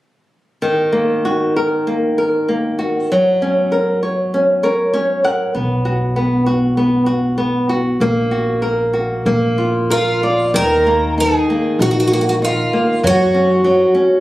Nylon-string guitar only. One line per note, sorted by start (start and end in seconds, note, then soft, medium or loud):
0.62 3.08 D#3 soft
0.92 1.23 A#3 soft
1.25 1.55 F#4 soft
1.56 1.87 A#4 soft
1.87 2.17 A#3 soft
2.18 2.48 A#4 soft
2.49 2.79 A#3 soft
2.79 3.10 F#4 soft
3.12 5.51 F#3 medium
3.42 3.72 C#4 soft
3.72 4.02 A#4 soft
4.03 4.33 C#5 soft
4.34 4.64 C#4 soft
4.63 4.92 A#4 soft
4.63 4.92 C#5 soft
4.93 5.24 C#4 soft
4.93 5.22 C#5 medium
5.24 5.54 A#4 soft
5.24 5.53 F#5 medium
5.55 6.15 B3 medium
5.85 6.15 F#4 soft
6.16 6.46 B3 soft
6.46 6.76 F#4 soft
6.77 7.06 B3 soft
7.06 7.37 F#4 soft
7.38 7.68 B3 soft
7.69 7.99 F#4 soft
8.01 9.22 A#3 medium
8.31 8.62 F#4 soft
8.62 8.93 A#4 soft
8.93 9.25 F#4 soft
9.26 10.51 A#3 medium
9.58 9.89 F4 soft
9.90 10.22 A#4 soft
10.23 10.54 D5 soft
10.54 13.00 D#3 medium
10.86 11.17 A#3 soft
11.18 11.48 D#4 soft
11.50 11.80 A#3 soft
11.80 12.10 D#4 soft
12.12 12.41 A#3 soft
12.42 12.72 D#4 soft
12.73 13.03 A#3 soft
13.04 13.63 F#3 medium
13.34 13.64 C#4 soft
13.64 13.94 F#3 medium
13.95 14.20 C#4 soft